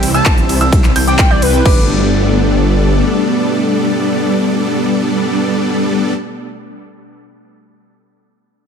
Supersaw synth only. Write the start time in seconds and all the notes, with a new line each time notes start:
Already playing: G3 C4 E4 C5 E5
0.14 G3 C4 E4 C5 E5
0.61 G3 C4 E4 C5 E5
0.96 G3 C4 E4 C5 G5
1.07 G3 C4 E4 C5 D5
1.31 G3 C4 E4 C5 G5
1.65 G3 D4 D5